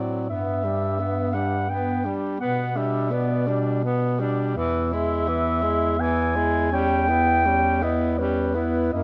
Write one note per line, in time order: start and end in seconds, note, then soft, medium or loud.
0.00 0.32 A2 soft
0.00 0.30 F#3 soft
0.00 0.29 C4 soft
0.00 0.29 D5 medium
0.29 2.14 G2 soft
0.29 0.66 B3 soft
0.29 1.35 E5 medium
0.64 1.01 G3 soft
0.64 1.01 D4 soft
0.99 1.36 B3 soft
1.33 1.69 G3 soft
1.33 1.68 D4 soft
1.33 1.71 F#5 medium
1.68 2.05 B3 soft
1.68 2.07 B3 soft
1.68 2.16 G5 medium
2.04 2.40 G3 soft
2.04 2.39 D4 soft
2.40 4.58 B2 soft
2.40 2.77 B3 soft
2.40 2.78 B3 soft
2.40 2.78 F#5 medium
2.76 3.13 G3 soft
2.76 3.12 D4 soft
2.76 3.11 E5 medium
3.10 3.48 B3 soft
3.10 3.49 B3 soft
3.10 3.82 D5 medium
3.47 3.84 G3 soft
3.47 3.83 D4 soft
3.84 4.22 B3 soft
3.84 4.21 B3 soft
4.20 4.56 G3 soft
4.20 4.55 D4 soft
4.55 8.92 E2 medium
4.55 4.95 E3 medium
4.55 4.93 B3 soft
4.55 6.02 E5 medium
4.92 5.30 G#3 soft
4.92 5.29 E4 soft
5.28 5.64 E3 medium
5.28 5.64 B3 medium
5.62 5.98 G#3 medium
5.62 5.98 E4 soft
5.99 6.37 E3 medium
5.99 6.37 B3 soft
5.99 6.75 G#5 medium
6.35 6.72 G#3 medium
6.35 6.71 E4 medium
6.71 7.11 G3 medium
6.71 7.10 C#4 medium
6.71 7.84 G5 loud
7.09 7.48 B3 soft
7.09 7.47 E4 soft
7.46 7.84 G3 medium
7.46 7.84 C#4 medium
7.82 8.19 B3 soft
7.82 8.18 E4 soft
7.82 8.21 D#5 medium
8.19 8.57 G3 medium
8.19 8.56 C#4 soft
8.19 8.92 B4 medium
8.55 8.93 B3 soft
8.55 8.92 E4 medium
8.92 9.03 F#2 medium
8.92 9.03 A#3 medium
8.92 9.03 E4 medium
8.92 9.03 D#5 medium